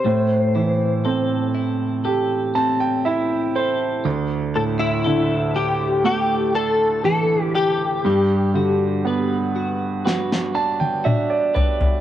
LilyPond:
<<
  \new Staff \with { instrumentName = "Clean electric guitar" } { \time 4/4 \key g \major \tempo 4 = 60 c''4. r2 r8 | r8 a'16 e'8. g'8 g'8 a'8 a'8 g'8~ | g'4. r2 r8 | }
  \new Staff \with { instrumentName = "Clean electric guitar" } { \time 4/4 \key g \major a,8 e'8 a'8 e'8 a'8 c'8 e'8 a'8 | d8 e'8 a'8 e'8 a'8 d'8 e'8 a'8 | g8 fis'8 b'8 fis'8 b'8 d'8 fis'8 b'8 | }
  \new Staff \with { instrumentName = "Grand piano" } { \time 4/4 \key g \major r2 r8 a''16 g''16 e''8 c''8 | r1 | r2 r8 a''16 g''16 e''16 d''16 d''8 | }
  \new Staff \with { instrumentName = "Grand piano" } { \clef bass \time 4/4 \key g \major a,8 e8 c'4 g'4 e'4 | d,8 a,8 d4 a4 e4 | g,8 d8 b4 fis'4 d'4 | }
  \new DrumStaff \with { instrumentName = "Drums" } \drummode { \time 4/4 r4 r4 r4 r4 | r4 r4 r4 r4 | r4 r4 sn16 sn8 tommh16 toml8 tomfh16 tomfh16 | }
>>